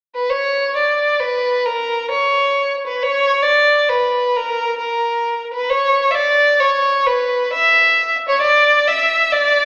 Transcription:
0.15 0.31 B4 medium
0.30 0.75 C#5 medium
0.76 1.22 D5 medium
1.21 1.67 B4 medium
1.65 2.11 A#4 medium
2.11 2.75 C#5 medium
2.87 3.04 B4 medium
3.03 3.44 C#5 medium
3.42 3.90 D5 medium
3.89 4.38 B4 medium
4.36 4.79 A#4 medium
4.80 5.45 A#4 medium
5.54 5.71 B4 medium
5.70 6.12 C#5 medium
6.11 6.61 D5 medium
6.11 6.16 E5 soft
6.60 7.08 C#5 medium
7.06 7.52 B4 medium
7.53 8.17 E5 medium
8.29 8.40 C#5 medium
8.41 8.89 D5 medium
8.88 9.34 E5 medium
9.32 9.65 D5 medium

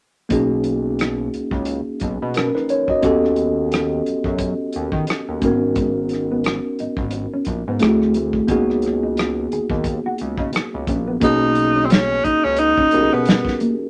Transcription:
0.29 1.29 B1 medium
0.29 2.98 A#3 medium
0.29 1.97 C#4 medium
0.29 1.98 D#4 medium
0.29 1.98 F#4 medium
0.29 1.98 G#4 medium
0.29 kick medium
0.29 closed hi-hat medium
0.64 closed hi-hat medium
0.99 cross-stick medium
0.99 closed hi-hat medium
1.34 1.42 C#2 soft
1.34 closed hi-hat soft
1.51 1.81 C#2 medium
1.51 kick medium
1.65 closed hi-hat medium
2.00 2.18 B1 medium
2.00 kick medium
2.00 closed hi-hat medium
2.22 2.51 B2 medium
2.34 2.54 C#4 soft
2.34 2.54 A#4 medium
2.34 cross-stick medium
2.34 closed hi-hat medium
2.55 2.69 D#4 soft
2.55 2.69 B4 medium
2.55 cross-stick soft
2.69 2.88 C#5 medium
2.69 closed hi-hat medium
2.88 3.03 F#4 soft
2.88 3.21 D#5 soft
2.88 kick medium
3.02 4.02 D#2 loud
3.02 5.37 B3 medium
3.02 5.38 C#4 medium
3.02 5.38 F#4 medium
3.02 5.39 G4 medium
3.02 5.39 A4 medium
3.02 kick medium
3.02 closed hi-hat medium
3.25 cross-stick soft
3.36 closed hi-hat medium
3.72 cross-stick loud
3.72 closed hi-hat medium
4.06 4.15 F#2 soft
4.06 closed hi-hat soft
4.24 4.54 F#2 medium
4.24 kick medium
4.39 kick medium
4.39 closed hi-hat medium
4.73 4.91 D#2 medium
4.73 closed hi-hat medium
4.92 5.06 D#3 medium
4.92 kick medium
5.07 cross-stick medium
5.07 closed hi-hat medium
5.28 5.41 D#2 medium
5.41 6.60 G#1 medium
5.41 5.49 A#3 soft
5.41 7.76 C#4 medium
5.41 7.77 D#4 medium
5.41 7.77 F#4 medium
5.41 7.78 A#4 medium
5.41 kick medium
5.41 closed hi-hat medium
5.47 7.79 B3 medium
5.76 5.90 G#3 medium
5.76 kick medium
5.76 closed hi-hat medium
6.09 muted clean electric guitar stroke soft
6.09 closed hi-hat medium
6.13 cross-stick soft
6.32 6.40 B3 medium
6.44 cross-stick loud
6.44 closed hi-hat medium
6.79 6.87 G#1 soft
6.79 6.92 D#4 medium
6.79 closed hi-hat soft
6.97 7.27 G#1 medium
6.97 kick medium
7.11 closed hi-hat medium
7.34 7.43 C#4 medium
7.45 7.64 A#1 medium
7.45 kick medium
7.45 closed hi-hat medium
7.49 muted clean electric guitar stroke soft
7.68 7.79 G#2 medium
7.68 7.77 B3 medium
7.79 8.40 D2 medium
7.79 8.48 A3 medium
7.79 8.49 C4 medium
7.79 8.49 E4 medium
7.79 7.88 F4 soft
7.79 8.49 G#4 medium
7.79 cross-stick medium
7.79 closed hi-hat medium
7.88 8.50 F#4 medium
8.02 cross-stick soft
8.14 8.29 A3 medium
8.14 closed hi-hat medium
8.33 kick medium
8.48 9.47 C#2 medium
8.48 11.17 A#3 medium
8.48 11.17 B3 medium
8.48 8.62 C#4 medium
8.48 11.18 D#4 medium
8.48 11.18 F#4 medium
8.48 kick medium
8.48 closed hi-hat medium
8.52 11.19 G#4 medium
8.70 cross-stick soft
8.82 muted clean electric guitar stroke soft
8.82 closed hi-hat medium
8.86 cross-stick soft
9.03 9.12 D#4 medium
9.17 cross-stick medium
9.17 closed hi-hat medium
9.52 9.60 D#2 soft
9.52 9.65 G#4 medium
9.52 closed hi-hat soft
9.70 9.99 D#2 medium
9.70 kick medium
9.84 kick medium
9.84 closed hi-hat medium
10.06 10.15 F#4 medium
10.18 10.37 C#2 medium
10.18 muted clean electric guitar stroke soft
10.18 closed hi-hat medium
10.37 10.51 C#3 medium
10.37 10.49 D#4 medium
10.37 kick medium
10.53 muted clean electric guitar stroke soft
10.53 cross-stick loud
10.53 closed hi-hat medium
10.74 10.86 C#2 medium
10.87 11.17 A#1 medium
10.87 11.01 C#4 medium
10.87 kick medium
10.87 closed hi-hat medium
11.08 11.17 B3 medium
11.20 12.20 B1 loud
11.20 12.88 A#3 medium
11.20 11.35 B3 medium
11.20 12.88 C#4 medium
11.20 12.89 D#4 medium
11.20 11.87 D#4 medium
11.20 12.89 F#4 medium
11.20 12.90 G#4 medium
11.20 kick loud
11.20 closed hi-hat medium
11.55 muted clean electric guitar stroke soft
11.55 closed hi-hat medium
11.76 11.85 C#4 medium
11.86 11.92 C4 medium
11.90 12.26 C#4 medium
11.90 snare loud
11.90 closed hi-hat medium
12.24 12.33 C#2 soft
12.24 12.46 D#4 medium
12.24 12.37 D#4 medium
12.24 kick medium
12.24 closed hi-hat medium
12.44 12.73 C#2 medium
12.44 12.61 C#4 medium
12.56 13.15 D#4 medium
12.56 closed hi-hat medium
12.77 12.87 C#4 medium
12.77 kick medium
12.91 13.09 B1 medium
12.91 13.90 C#4 soft
12.91 13.90 D#4 soft
12.91 13.90 F#4 soft
12.91 13.00 G4 soft
12.91 13.90 A#4 soft
12.91 muted clean electric guitar stroke soft
12.91 closed hi-hat medium
13.01 13.90 G#4 soft
13.12 13.41 B2 medium
13.12 13.21 B3 medium
13.12 13.61 B3 medium
13.26 snare loud
13.26 closed hi-hat medium
13.45 kick medium
13.45 snare soft
13.60 13.73 A#3 medium
13.60 closed hi-hat medium

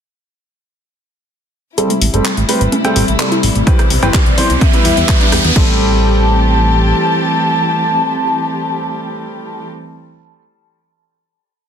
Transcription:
1.78 4.59 C3 medium
1.78 5.52 G3 medium
1.78 1.89 G3 medium
1.78 3.65 A3 medium
1.78 1.89 C4 medium
1.78 4.59 E4 medium
1.78 1.89 A4 loud
1.78 1.87 A4 loud
1.78 2.27 E5 loud
1.78 closed hi-hat medium
1.78 riser medium
1.90 1.99 A3 medium
1.90 closed hi-hat soft
2.01 2.09 A1 loud
2.01 2.11 A3 medium
2.01 open hi-hat loud
2.14 2.21 G1 medium
2.14 2.24 G3 medium
2.14 2.23 A3 medium
2.14 2.24 C4 medium
2.14 2.24 A4 medium
2.14 closed hi-hat soft
2.25 2.35 A4 medium
2.25 2.74 G5 loud
2.25 clap loud
2.25 closed hi-hat medium
2.37 2.44 A1 medium
2.37 2.46 A3 medium
2.37 closed hi-hat soft
2.49 2.59 G3 medium
2.49 2.58 A3 medium
2.49 2.59 C4 medium
2.49 2.59 B4 loud
2.49 open hi-hat loud
2.61 2.68 A1 medium
2.61 closed hi-hat soft
2.72 2.82 A3 medium
2.72 3.21 E5 loud
2.72 closed hi-hat medium
2.72 high conga medium
2.85 3.01 G3 medium
2.85 2.94 A3 medium
2.85 3.01 C4 medium
2.85 3.01 A4 loud
2.85 closed hi-hat soft
2.85 cowbell medium
2.96 3.04 A1 medium
2.96 3.06 G4 medium
2.96 open hi-hat loud
3.08 3.15 A1 medium
3.08 3.17 A3 medium
3.08 closed hi-hat soft
3.20 3.36 G3 medium
3.20 3.29 A3 medium
3.20 3.36 C4 medium
3.20 3.36 A4 medium
3.20 3.66 D5 loud
3.20 clap loud
3.20 closed hi-hat medium
3.32 3.41 E4 loud
3.32 closed hi-hat soft
3.43 3.51 A1 medium
3.43 3.53 A3 medium
3.43 open hi-hat loud
3.55 3.63 A1 medium
3.55 3.65 A3 medium
3.55 closed hi-hat soft
3.67 5.54 B2 medium
3.67 3.78 E3 loud
3.67 3.78 C4 medium
3.67 3.76 G4 loud
3.67 3.78 B4 loud
3.67 4.16 C5 loud
3.67 kick loud
3.67 closed hi-hat medium
3.79 3.88 C4 medium
3.79 cross-stick medium
3.79 closed hi-hat soft
3.90 3.98 C2 loud
3.90 4.00 C4 medium
3.90 open hi-hat loud
4.03 4.10 G1 medium
4.03 4.13 E3 medium
4.03 4.12 C4 medium
4.03 4.13 C4 medium
4.03 4.13 B4 loud
4.03 closed hi-hat soft
4.03 cowbell medium
4.14 4.24 G4 loud
4.14 4.63 D5 medium
4.14 kick loud
4.14 clap loud
4.14 closed hi-hat medium
4.26 4.33 C2 medium
4.26 4.35 C4 medium
4.26 closed hi-hat soft
4.38 4.48 E3 medium
4.38 4.48 C4 medium
4.38 4.47 C4 medium
4.38 4.48 C5 loud
4.38 open hi-hat loud
4.50 4.57 C2 medium
4.50 closed hi-hat soft
4.61 5.55 E3 medium
4.61 4.71 B3 medium
4.61 5.55 G4 medium
4.61 5.32 E5 medium
4.61 kick loud
4.61 closed hi-hat medium
4.61 high conga loud
4.73 4.90 G3 medium
4.73 4.83 B3 medium
4.73 4.90 E4 medium
4.73 4.90 B4 loud
4.73 closed hi-hat soft
4.85 4.93 E2 medium
4.85 4.95 E4 medium
4.85 open hi-hat loud
4.97 5.04 E2 medium
4.97 5.06 B3 medium
4.97 closed hi-hat soft
5.09 5.25 G3 medium
5.09 5.18 B3 medium
5.09 5.25 E4 medium
5.09 5.25 B4 medium
5.09 kick loud
5.09 clap loud
5.09 closed hi-hat medium
5.21 5.30 D4 loud
5.21 closed hi-hat soft
5.32 5.40 E2 medium
5.32 5.42 B3 medium
5.32 cross-stick medium
5.32 open hi-hat loud
5.44 5.52 E2 medium
5.44 5.53 B3 medium
5.44 closed hi-hat soft
5.56 6.94 A1 medium
5.56 9.69 E3 medium
5.56 9.69 G3 medium
5.56 9.69 A3 medium
5.56 9.69 C4 loud
5.56 9.69 C4 medium
5.56 9.70 C4 medium
5.56 9.69 G4 medium
5.56 9.69 A4 loud
5.56 9.69 A5 loud
5.56 kick loud
5.56 crash medium

